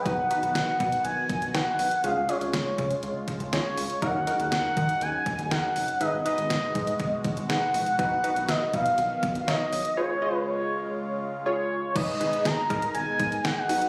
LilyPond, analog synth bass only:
\new Staff \with { instrumentName = "Analog synth bass" } { \clef bass \time 4/4 \key gis \dorian \tempo 4 = 121 b,,16 b,,16 r16 b,,16 b,,16 r16 b,16 r16 b,,16 r16 b,,16 b,,16 b,,16 r16 b,,16 r16 | cis,16 cis,16 r16 cis,16 cis,16 r16 cis16 r16 cis,16 r16 cis,16 cis,16 cis,16 r16 cis,16 r16 | dis,16 dis,16 r16 dis,16 dis,16 r16 dis16 r16 dis,16 r16 dis,16 dis,16 dis,16 r16 fis,,16 r16 | gis,,16 gis,,16 r16 gis,,16 gis,,16 r16 gis,16 r16 gis,,16 r16 gis,,16 gis,,16 gis,,16 r16 ais,,16 r16 |
b,,16 b,,16 r16 b,,16 b,,16 r16 b,16 r16 b,,16 r16 b,,16 b,,16 b,,16 r16 b,,16 r16 | r1 | gis,,16 r16 gis,,16 r16 gis,,16 r16 gis,16 r16 gis,,16 r16 gis,16 r16 gis,,16 r16 b,,8 | }